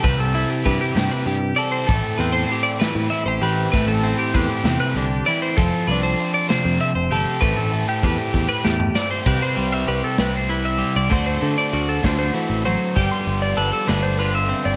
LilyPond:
<<
  \new Staff \with { instrumentName = "Clean electric guitar" } { \time 6/8 \key a \minor \tempo 4. = 65 b'16 a'8 g'16 b'16 g'8 b'16 g'8 d''16 c''16 | a'8 b'16 c''8 d''16 b'8 e''16 c''16 g'8 | b'16 a'8 g'16 b'16 g'8 b'16 g'8 d''16 c''16 | a'8 b'16 c''8 d''16 c''8 e''16 c''16 g'8 |
b'16 a'8 g'16 b'16 g'8 b'16 g'8 d''16 c''16 | g'16 c''8 e''16 b'16 a'16 b'16 c''16 b'16 e''8 d''16~ | d''16 c''8 d''8 a'16 c''16 c''16 a'8 c''8 | g'16 c'''8 d''16 b'16 a'16 b'16 c''16 b'16 e''8 d''16 | }
  \new Staff \with { instrumentName = "Clean electric guitar" } { \time 6/8 \key a \minor << { r8 e'8 g'4 g'8 a'8~ | a'8 c'8 g'4 e'16 g'16 b'8 | r8 c'8 g'2 | r8 d'2 a'8~ |
a'4 g'2 | b'4 g'4 e'4 | <a fis' c''>4 fis'2 | r4 a'16 r8. f'4 | } \\ { c4. c4. | a,4. e4. | a,4. c8 d8 e8 | f4. c4. |
a,2 a,8 r8 | c8 g4 c4 g8 | d8 a4 d8 e8 fis8 | g4. d4 c'8 | } >> }
  \new Staff \with { instrumentName = "Overdriven electric guitar" } { \time 6/8 \key a \minor <e g c' e'>8 <e g c' e'>8 <e g c' e'>8 <e g c' e'>8 r8 <e g c' e'>8 | <e a c' e'>8 <e a c' e'>8 <e a c' e'>8 <e a c' e'>8 r8 <e a c' e'>8 | <e a c' e'>8 <e a c' e'>8 <e a c' e'>8 <e a c' e'>8 r8 <e a c' e'>8 | <f a c' f'>8 <f a c' f'>8 <f a c' f'>8 <f a c' f'>8 r8 <f a c' f'>8 |
<e a c' e'>8 <e a c' e'>8 <e a c' e'>8 <e a c' e'>8 r8 <e a c' e'>8 | <c g c' e'>4. <c g c' e'>4. | <d a c' fis'>4. <d a c' fis'>4. | <g, d f b f'>4. <g, d f b f'>4. | }
  \new Staff \with { instrumentName = "Picked electric bass" } { \clef bass \time 6/8 \key a \minor c,16 c,8 r16 g,16 r16 g,16 r16 g,8 r8 | a,,16 r16 e,8 r8. a,16 r16 a,,16 a,,8 | r16 a,,8 r16 e,16 r16 e,16 r16 c,8 r8 | f,,16 r16 c,8 r8. f,16 r16 f,,16 g,,16 r16 |
a,,16 a,,8 r16 e,16 r16 e,16 r16 e,8 r8 | c,16 r16 c,8 c,16 r16 c,4~ c,16 c,16 | d,8 d16 r16 d,8 d,8 r16 a,,8 r16 | g,,16 r16 g,,8 g,,16 r16 g,,4~ g,,16 g,,16 | }
  \new DrumStaff \with { instrumentName = "Drums" } \drummode { \time 6/8 <hh bd>8 hh8 <hh bd>8 <hh sn>8 hh8 hh8 | <hh bd>8 hh8 hh8 <hh sn>8 hh8 hh8 | <hh bd>8 hh8 <hh bd>8 <hh sn>8 hh8 hh8 | <hh bd>8 hh8 hh8 <hh sn>8 hh8 hh8 |
<hh bd>8 hh8 <hh bd>8 bd8 sn16 toml16 sn8 | <cymc bd>8 hh8 hh8 <hh sn>8 hh8 hh8 | <hh bd>8 hh8 hh8 <hh bd sn>8 hh8 hh8 | <hh bd>8 hh8 hh8 <hh sn>8 hh8 hh8 | }
>>